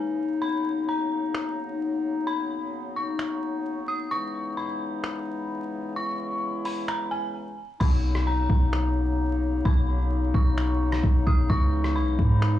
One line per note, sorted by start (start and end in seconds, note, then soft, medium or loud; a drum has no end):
0.00 4.07 C#3 medium
0.00 0.25 E3 medium
0.00 0.25 G#3 medium
0.00 4.07 A#3 medium
0.00 4.07 D#4 medium
0.42 4.08 F#3 medium
0.42 7.64 B3 medium
0.42 0.85 B5 medium
0.89 2.23 A#5 medium
1.35 finger snap loud
2.27 2.92 B5 loud
2.96 3.85 C#6 medium
3.19 finger snap loud
3.88 4.10 D#6 medium
4.11 7.64 C#3 medium
4.11 7.64 E3 medium
4.11 7.64 G#3 medium
4.11 5.94 D#4 medium
4.11 4.55 C#6 loud
4.57 5.92 B5 medium
5.04 finger snap loud
5.96 7.64 E4 medium
5.96 6.61 C#6 loud
6.65 6.87 B5 medium
6.65 open hi-hat soft
6.88 7.10 A#5 medium
6.88 finger snap loud
7.11 7.33 G#5 medium
7.80 8.47 B1 loud
7.80 12.59 C#3 medium
7.80 11.46 F#3 medium
7.80 11.46 A#3 medium
7.80 12.59 B3 medium
7.80 12.59 D#4 medium
7.80 8.24 B5 loud
7.80 kick loud
7.80 crash medium
8.15 cross-stick medium
8.27 9.61 A#5 medium
8.50 9.61 B1 loud
8.50 kick loud
8.73 finger snap loud
9.65 10.32 B1 loud
9.65 10.30 B5 loud
9.65 kick loud
10.34 11.01 B1 loud
10.34 11.23 C#6 medium
10.34 kick loud
10.58 finger snap loud
10.92 cross-stick medium
11.03 11.26 B1 loud
11.03 kick loud
11.27 11.49 B1 loud
11.27 11.49 D#6 medium
11.27 kick medium
11.50 11.97 C#2 loud
11.50 12.59 E3 medium
11.50 12.59 G#3 medium
11.50 11.93 C#6 loud
11.50 kick loud
11.84 cross-stick medium
11.96 12.18 B1 loud
11.96 12.59 B5 medium
12.19 12.59 G#2 loud
12.19 kick loud
12.42 finger snap loud